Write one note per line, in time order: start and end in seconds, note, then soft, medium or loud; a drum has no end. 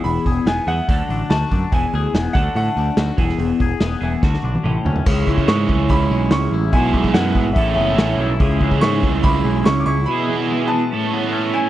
0.00 0.66 E3 medium
0.00 0.66 B3 medium
0.00 0.67 E4 medium
0.00 0.66 G#4 medium
0.00 0.43 B5 medium
0.04 0.17 E1 medium
0.04 0.88 E2 medium
0.04 open hi-hat medium
0.26 0.38 E1 medium
0.26 0.89 G#4 medium
0.26 kick medium
0.26 open hi-hat soft
0.46 0.59 E1 medium
0.46 0.89 B3 medium
0.46 0.68 G#5 medium
0.46 snare loud
0.46 open hi-hat medium
0.67 0.80 E2 medium
0.67 0.89 E3 medium
0.67 0.88 E3 medium
0.67 0.88 B3 medium
0.67 0.87 E4 medium
0.67 0.87 G#4 medium
0.67 1.32 F#5 medium
0.67 open hi-hat soft
0.89 1.01 D2 medium
0.89 1.72 D3 medium
0.89 1.71 F#3 medium
0.89 1.71 A3 medium
0.89 1.71 D4 medium
0.89 1.72 A4 medium
0.89 kick loud
0.89 open hi-hat medium
1.09 1.22 A1 medium
1.09 1.51 D4 medium
1.09 open hi-hat soft
1.30 1.43 D2 medium
1.30 1.72 F#4 medium
1.30 1.73 A5 medium
1.30 snare loud
1.30 open hi-hat medium
1.51 1.64 F#2 medium
1.51 1.72 D4 medium
1.51 kick medium
1.51 open hi-hat soft
1.72 1.85 E1 medium
1.72 2.36 E2 medium
1.72 2.33 E3 medium
1.72 2.34 B3 medium
1.72 2.34 E4 medium
1.72 2.34 G#4 medium
1.72 2.31 G#5 medium
1.72 kick medium
1.72 open hi-hat medium
1.93 2.06 D2 medium
1.93 2.36 G#4 medium
1.93 open hi-hat soft
2.14 2.27 E1 medium
2.14 2.35 B3 medium
2.14 snare medium
2.14 open hi-hat medium
2.33 2.48 D2 medium
2.33 3.19 D3 medium
2.33 3.17 F#3 medium
2.33 3.17 A3 medium
2.33 3.17 D4 medium
2.33 3.18 A4 medium
2.33 2.53 F#5 medium
2.33 kick medium
2.33 open hi-hat soft
2.55 2.68 A2 medium
2.55 3.19 A3 medium
2.55 4.61 F#5 medium
2.55 open hi-hat medium
2.77 2.89 D2 medium
2.77 3.19 D4 medium
2.77 open hi-hat soft
2.97 3.10 D2 medium
2.97 3.19 F#4 medium
2.97 snare medium
2.97 open hi-hat medium
3.17 3.31 E1 medium
3.17 3.39 E2 medium
3.17 4.00 E3 medium
3.17 4.00 B3 medium
3.17 4.00 E4 medium
3.17 3.99 G#4 medium
3.17 kick medium
3.17 open hi-hat soft
3.29 snare soft
3.39 3.52 E1 medium
3.39 4.23 E2 medium
3.39 open hi-hat medium
3.60 3.73 E1 medium
3.60 4.23 G#4 medium
3.60 kick medium
3.60 open hi-hat soft
3.80 3.94 E1 medium
3.80 4.24 B3 medium
3.80 snare loud
3.80 open hi-hat medium
4.01 4.15 E1 medium
4.01 4.22 E3 medium
4.01 4.23 E3 medium
4.01 4.21 B3 medium
4.01 4.21 E4 medium
4.01 4.21 G#4 medium
4.01 open hi-hat soft
4.22 4.36 D2 medium
4.22 4.65 D3 medium
4.22 4.63 A3 medium
4.22 4.63 D4 medium
4.22 4.64 F#4 medium
4.22 kick loud
4.22 snare soft
4.34 snare soft
4.43 4.56 B1 medium
4.43 4.65 D4 medium
4.55 high tom medium
4.63 4.77 A1 medium
4.63 5.07 A2 medium
4.63 5.04 E3 medium
4.63 5.05 A3 medium
4.63 5.05 C#4 medium
4.63 mid tom medium
4.85 4.98 D2 medium
4.85 5.07 C#4 medium
4.85 floor tom medium
4.96 floor tom medium
5.06 5.25 C#2 medium
5.06 6.11 C#3 medium
5.06 6.71 G#3 medium
5.06 6.74 C#4 medium
5.06 6.75 E4 medium
5.06 6.69 G#4 medium
5.06 6.72 C#5 medium
5.06 11.69 E5 medium
5.06 6.72 C#6 medium
5.06 kick medium
5.06 crash loud
5.27 5.46 C#2 medium
5.27 6.94 E3 medium
5.27 kick medium
5.38 kick medium
5.48 5.67 G#2 medium
5.48 6.10 G#3 medium
5.48 5.91 C#6 medium
5.48 snare loud
5.48 open hi-hat medium
5.69 5.88 C#2 medium
5.69 6.31 C#4 medium
5.69 kick medium
5.89 6.09 C#2 medium
5.89 6.53 E4 medium
5.89 6.33 B5 medium
5.89 kick loud
5.89 open hi-hat medium
6.10 6.29 B1 medium
6.10 6.74 G#3 medium
6.31 6.50 C#2 medium
6.31 6.74 C#4 medium
6.31 6.75 C#6 medium
6.31 snare loud
6.31 open hi-hat medium
6.51 6.71 A1 medium
6.51 8.19 E4 medium
6.70 6.92 B1 medium
6.70 7.56 B2 medium
6.70 7.57 G#3 medium
6.70 7.54 B3 medium
6.70 7.55 G#4 medium
6.70 7.55 B4 medium
6.70 7.12 G#5 medium
6.70 7.55 B5 medium
6.70 kick medium
6.70 open hi-hat medium
6.75 7.57 E4 medium
6.93 7.13 B1 medium
6.93 8.62 E3 medium
6.93 kick medium
7.04 kick medium
7.14 7.34 F#2 medium
7.14 7.56 G#3 medium
7.14 7.58 F#5 medium
7.14 snare loud
7.14 open hi-hat medium
7.35 7.54 G#1 medium
7.35 7.56 B3 medium
7.35 kick medium
7.53 7.75 A1 medium
7.53 8.40 A2 medium
7.53 8.39 C#4 medium
7.53 8.40 E4 medium
7.53 7.73 E5 medium
7.53 kick loud
7.53 open hi-hat medium
7.58 8.41 A4 medium
7.58 10.06 C#5 medium
7.74 7.96 F#1 medium
7.74 8.40 B3 medium
7.74 8.15 E5 medium
7.97 8.17 A1 medium
7.97 8.41 C#4 medium
7.97 snare loud
7.97 open hi-hat medium
8.18 8.38 B1 medium
8.18 9.23 E4 medium
8.39 8.59 C#2 medium
8.39 9.45 C#3 medium
8.39 10.07 G#3 medium
8.39 10.07 C#4 medium
8.39 10.09 E4 medium
8.39 10.90 G#4 medium
8.39 10.09 G#4 medium
8.39 10.07 C#6 medium
8.39 kick loud
8.39 open hi-hat soft
8.61 8.80 C#2 medium
8.61 10.28 E3 medium
8.61 kick medium
8.71 kick medium
8.81 9.01 G#2 medium
8.81 9.42 G#3 medium
8.81 9.21 C#6 loud
8.81 snare loud
8.81 open hi-hat medium
9.03 9.22 C#2 medium
9.03 9.65 C#4 medium
9.03 kick medium
9.23 9.43 C#2 medium
9.23 9.88 E4 medium
9.23 9.67 B5 loud
9.23 kick loud
9.23 open hi-hat medium
9.43 9.64 B1 medium
9.43 10.07 G#3 medium
9.65 9.85 C#2 medium
9.65 10.08 C#4 medium
9.65 9.82 C#6 loud
9.65 snare loud
9.65 open hi-hat medium
9.80 9.86 D6 medium
9.86 10.06 C#2 medium
9.86 11.53 E4 medium
9.86 10.06 C#6 loud
10.06 10.92 B2 medium
10.06 10.90 B3 medium
10.06 10.91 E4 medium
10.06 10.72 B5 medium
10.11 10.93 G#4 medium
10.28 10.91 E3 medium
10.50 10.92 G#3 medium
10.68 10.92 B3 medium
10.68 11.49 A5 medium
10.90 11.69 A2 medium
10.90 11.69 C#4 medium
10.90 11.69 E4 medium
10.90 11.69 A4 medium
10.90 11.69 C#5 medium
10.90 11.69 B5 medium
11.13 11.69 B3 medium
11.32 11.69 C#4 medium
11.54 11.69 E4 medium
11.54 11.69 G#5 medium